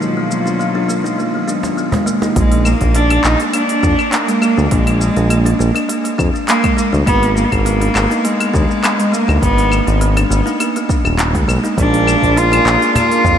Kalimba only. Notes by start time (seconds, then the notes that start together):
0.01 A#3
0.17 B3
0.31 A#3
0.46 D4
0.59 B3
0.75 D4
0.88 A#3
1.04 D#4
1.18 A#3
1.34 B3
1.48 D4
1.63 D4
1.77 B3
1.93 G#3
2.06 A#3
2.22 D#4
2.36 A#3
2.52 A#3
2.65 A#3
2.81 D4
2.95 A#3
3.11 D4
3.24 A#3
3.40 D4
3.53 A#3
3.69 A#3
3.83 D4
3.99 D4
4.12 A#3
4.27 G#3
4.42 A#3
4.57 D4
4.71 A#3
4.87 A#3
5.01 A#3
5.17 D4
5.30 A#3
5.45 D4
5.59 A#3
5.75 D4
5.89 A#3
6.04 A#3
6.18 D4
6.34 D4
6.48 A#3
6.63 G#3
6.77 A#3
6.93 D4
7.06 A#3
7.22 B3
7.36 A#3
7.52 D4
7.65 B3
7.81 D4
7.95 A#3
8.10 D#4
8.24 A#3
8.40 B3
8.54 D4
8.69 D4
8.83 B3
8.99 G#3
9.12 A#3
9.28 D#4
9.42 A#3
9.58 B3
9.71 A#3
9.87 D4
10.01 B3
10.17 D4
10.30 A#3
10.46 D#4
10.60 A#3
10.76 B3
10.89 D4
11.05 D4
11.19 B3
11.34 G#3
11.48 A#3
11.64 D#4
11.77 A#3
11.93 A#3
12.07 A#3
12.22 D4
12.36 A#3
12.52 D4
12.66 A#3
12.81 D4
12.95 A#3
13.10 A#3
13.25 D4